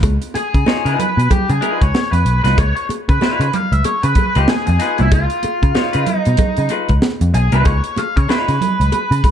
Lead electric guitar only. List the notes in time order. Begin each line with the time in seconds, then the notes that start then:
0.35 G#4
1.00 B4
1.31 G4
1.51 G#4
1.82 C#5
2.12 B4
2.44 B4
2.58 C#5
2.76 C#5
3.09 B4
3.42 B4
3.54 F5
3.72 E5
3.85 C#5
4.04 B4
4.36 G4
4.50 G#4
4.67 G#4
5.00 E4
5.13 F4
6.16 D#4
7.35 G#4
7.54 B4
7.66 C#5
7.98 F5
8.16 C#5
8.30 B4